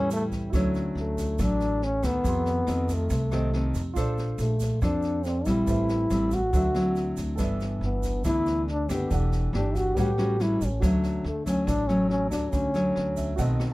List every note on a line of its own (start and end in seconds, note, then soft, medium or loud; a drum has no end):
0.00 0.49 E2 medium
0.00 0.51 A2 medium
0.00 0.49 G3 medium
0.00 0.49 C#4 medium
0.00 0.48 E4 medium
0.00 0.49 E4 medium
0.00 0.50 G4 soft
0.00 0.52 B4 soft
0.00 0.53 C#5 medium
0.10 0.25 A3 loud
0.10 snare soft
0.10 shaker medium
0.32 kick soft
0.32 snare soft
0.32 shaker soft
0.50 0.93 D2 medium
0.50 1.37 D3 medium
0.50 2.19 E4 soft
0.50 2.20 F#4 soft
0.50 kick medium
0.50 cross-stick medium
0.50 snare soft
0.50 shaker medium
0.54 1.36 F#3 medium
0.54 1.36 A3 medium
0.54 1.36 C#4 medium
0.54 2.21 A4 soft
0.54 2.22 C#5 medium
0.74 snare soft
0.74 shaker soft
0.95 1.35 D2 medium
0.95 1.43 A3 medium
0.95 snare soft
1.17 kick soft
1.17 snare soft
1.17 shaker medium
1.39 1.99 A1 medium
1.39 2.22 A2 soft
1.39 1.81 F#3 soft
1.39 1.81 A3 soft
1.39 1.85 D4 loud
1.39 kick medium
1.39 cross-stick medium
1.39 snare soft
1.39 shaker medium
1.60 snare soft
1.60 shaker soft
1.82 2.08 C#4 loud
1.82 snare soft
2.03 2.23 D2 medium
2.03 2.63 D#3 medium
2.03 2.64 A3 medium
2.03 2.95 B3 medium
2.03 kick soft
2.03 cross-stick medium
2.03 snare soft
2.03 shaker medium
2.22 3.08 F2 medium
2.22 2.64 F2 medium
2.22 3.28 D#4 soft
2.22 3.29 G4 soft
2.22 3.30 A4 soft
2.22 kick medium
2.22 snare soft
2.22 shaker medium
2.28 3.31 C6 soft
2.46 snare soft
2.46 shaker soft
2.67 3.07 F2 medium
2.67 3.10 D#3 medium
2.67 3.10 A3 medium
2.67 3.10 C4 medium
2.67 cross-stick medium
2.67 snare soft
2.67 shaker medium
2.89 kick soft
2.89 snare soft
2.89 shaker medium
2.93 3.77 A3 medium
3.10 3.70 C2 loud
3.10 3.94 C3 medium
3.10 kick medium
3.10 snare soft
3.10 shaker medium
3.30 3.50 D#3 medium
3.30 3.50 A3 medium
3.30 3.50 C4 medium
3.30 3.95 D#4 soft
3.30 3.96 G4 soft
3.30 3.95 A4 soft
3.30 3.96 C5 soft
3.30 cross-stick medium
3.30 snare soft
3.30 shaker soft
3.53 3.81 D#3 medium
3.53 3.81 A3 medium
3.53 3.81 C4 medium
3.53 snare soft
3.74 3.95 F2 medium
3.74 kick soft
3.74 snare soft
3.74 shaker medium
3.94 4.36 A#1 medium
3.94 4.54 D4 medium
3.94 5.21 F4 medium
3.94 5.22 A4 soft
3.94 4.54 A4 medium
3.94 4.54 C5 medium
3.94 5.23 C5 medium
3.94 kick medium
3.94 cross-stick soft
3.94 snare soft
3.94 shaker medium
4.00 5.24 D5 medium
4.18 snare soft
4.18 shaker soft
4.38 4.78 A#1 medium
4.38 4.79 A3 medium
4.38 snare soft
4.38 shaker medium
4.60 kick soft
4.60 snare soft
4.60 shaker medium
4.81 5.42 F2 medium
4.81 5.65 F3 soft
4.81 5.24 D4 soft
4.81 5.27 D4 medium
4.81 5.25 A4 medium
4.81 5.25 C5 medium
4.81 kick medium
4.81 cross-stick medium
4.81 snare soft
4.81 shaker medium
5.02 snare soft
5.02 shaker soft
5.24 5.48 C4 medium
5.24 5.68 A4 soft
5.24 5.68 C5 soft
5.24 5.69 D5 soft
5.24 snare soft
5.24 shaker medium
5.46 5.66 A#1 medium
5.46 6.07 G3 medium
5.46 6.07 C4 medium
5.46 6.36 E4 medium
5.46 6.07 E4 medium
5.46 kick soft
5.46 cross-stick soft
5.46 snare soft
5.46 shaker medium
5.65 6.07 A1 medium
5.65 6.51 A2 medium
5.65 6.50 G4 soft
5.65 6.51 B4 soft
5.65 kick medium
5.65 snare soft
5.65 shaker medium
5.69 6.52 C5 soft
5.69 6.53 E5 medium
5.89 snare soft
5.89 shaker soft
6.10 6.50 A1 medium
6.10 6.39 G3 medium
6.10 6.39 C4 medium
6.10 6.39 E4 medium
6.10 cross-stick medium
6.10 snare soft
6.10 shaker medium
6.31 7.19 F#4 medium
6.31 kick soft
6.31 snare soft
6.31 shaker medium
6.51 7.13 D2 medium
6.51 7.37 D3 medium
6.51 6.66 F#3 soft
6.51 6.66 C4 soft
6.51 7.36 F#4 soft
6.51 7.34 A4 soft
6.51 kick medium
6.51 snare soft
6.51 shaker medium
6.55 6.66 E4 soft
6.55 7.38 C5 soft
6.55 7.39 E5 medium
6.75 7.36 F#3 medium
6.75 7.36 C4 medium
6.75 7.36 E4 medium
6.75 cross-stick medium
6.75 snare soft
6.75 shaker soft
6.96 snare soft
6.96 shaker medium
7.17 7.37 D2 medium
7.17 kick soft
7.17 snare soft
7.17 shaker medium
7.36 7.79 G1 medium
7.36 8.22 G2 medium
7.36 8.21 E3 medium
7.36 8.21 B3 medium
7.36 9.05 A4 medium
7.36 9.06 B4 soft
7.36 9.07 D5 soft
7.36 kick medium
7.36 cross-stick soft
7.36 snare soft
7.36 shaker medium
7.40 8.21 D4 medium
7.40 9.08 E5 medium
7.60 snare soft
7.60 shaker soft
7.81 8.21 G1 medium
7.81 8.23 B3 medium
7.81 snare soft
8.03 kick soft
8.03 snare soft
8.03 shaker medium
8.24 8.85 D2 loud
8.24 9.08 D3 soft
8.24 8.67 E3 medium
8.24 8.67 B3 medium
8.24 8.68 D4 medium
8.24 8.65 E4 loud
8.24 kick medium
8.24 cross-stick medium
8.24 snare soft
8.24 shaker medium
8.46 snare soft
8.46 shaker soft
8.68 8.94 D4 loud
8.68 snare soft
8.89 9.09 F#1 medium
8.89 9.50 A3 medium
8.89 9.12 B3 medium
8.89 9.50 D4 medium
8.89 9.51 G4 medium
8.89 kick soft
8.89 cross-stick medium
8.89 snare soft
8.89 shaker medium
9.07 9.50 E1 medium
9.07 9.94 E3 medium
9.07 9.92 G4 soft
9.07 9.94 A4 soft
9.07 9.95 D5 soft
9.07 kick medium
9.07 snare soft
9.07 shaker medium
9.14 9.96 F#5 medium
9.32 snare soft
9.32 shaker soft
9.53 9.93 G1 medium
9.53 9.95 A3 medium
9.53 9.77 D4 medium
9.53 9.95 D4 medium
9.53 9.95 G4 medium
9.53 cross-stick medium
9.53 snare soft
9.75 9.99 F#4 medium
9.75 kick soft
9.75 snare soft
9.75 shaker medium
9.93 10.57 A1 medium
9.93 10.80 A2 medium
9.93 10.78 G4 soft
9.93 10.80 B4 soft
9.93 kick medium
9.93 snare soft
9.97 10.09 G3 soft
9.97 10.10 C#4 soft
9.97 10.10 F#4 medium
9.97 10.43 G4 medium
9.97 10.81 C#5 soft
9.97 10.82 F#5 medium
9.97 shaker medium
10.18 10.36 G3 medium
10.18 10.36 C#4 medium
10.18 10.36 F#4 medium
10.18 cross-stick medium
10.18 snare soft
10.18 shaker soft
10.40 10.67 G3 medium
10.40 10.67 C#4 soft
10.40 10.67 E4 medium
10.40 10.67 F#4 medium
10.40 snare soft
10.40 shaker soft
10.61 10.81 A1 medium
10.61 kick soft
10.61 snare soft
10.61 shaker medium
10.65 10.84 C#4 medium
10.80 11.22 D2 medium
10.80 11.65 D3 medium
10.80 11.24 F#3 medium
10.80 11.24 A3 medium
10.80 11.25 C#4 medium
10.80 13.34 F#4 soft
10.80 13.35 A4 soft
10.80 kick medium
10.80 cross-stick soft
10.80 snare soft
10.80 shaker medium
10.84 13.36 C#5 soft
10.84 13.16 E5 soft
11.03 snare soft
11.03 shaker soft
11.24 11.64 D2 medium
11.24 11.46 A3 medium
11.24 snare soft
11.46 11.85 F#3 medium
11.46 11.86 A3 medium
11.46 11.69 C#4 medium
11.46 11.86 C#4 medium
11.46 kick soft
11.46 snare soft
11.46 shaker medium
11.67 12.27 A1 loud
11.67 12.51 A2 soft
11.67 11.89 D4 loud
11.67 kick medium
11.67 cross-stick medium
11.67 snare soft
11.67 shaker medium
11.87 12.71 F#3 medium
11.87 12.71 A3 medium
11.87 12.09 C#4 medium
11.87 12.71 C#4 medium
11.87 snare soft
11.87 shaker soft
12.10 12.30 C#4 loud
12.10 snare soft
12.31 12.51 D2 medium
12.31 12.53 D4 medium
12.31 kick soft
12.31 cross-stick medium
12.31 snare soft
12.31 shaker medium
12.52 12.93 D2 medium
12.52 13.36 D3 medium
12.52 13.38 C#4 loud
12.52 kick soft
12.52 snare soft
12.52 shaker medium
12.74 13.35 F#3 medium
12.74 13.35 A3 medium
12.74 13.36 C#4 medium
12.74 snare soft
12.74 shaker soft
12.96 13.36 D2 medium
12.96 cross-stick medium
12.96 snare soft
13.17 13.37 E5 soft
13.17 kick soft
13.17 snare soft
13.17 shaker medium
13.36 13.73 B1 loud
13.36 13.73 B2 soft
13.36 13.73 D#3 soft
13.36 13.73 A3 soft
13.36 13.73 C4 medium
13.36 13.73 F#4 medium
13.36 13.73 A4 soft
13.36 13.73 C5 soft
13.36 13.69 F#5 soft
13.36 kick medium
13.36 snare soft
13.36 shaker medium
13.42 13.73 D#5 medium
13.60 cross-stick medium
13.60 snare soft
13.60 shaker soft